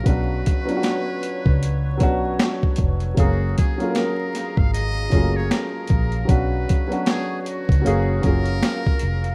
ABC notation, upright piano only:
X:1
M:4/4
L:1/16
Q:"Swing 16ths" 1/4=77
K:F#
V:1 name="Upright piano"
[F,B,C=DF]3 [F,B,CDEF]6- [F,B,CDEF] [F,B,CDF]6 | [F,G,A,CGe]3 [F,A,CEGA]6- [F,A,CEGA] [F,=A,^A,CEG]6 | [F,B,C=DF]3 [F,B,CDF]4- [F,B,CDF] [F,A,CGe]2 [F,A,CEG]6 |]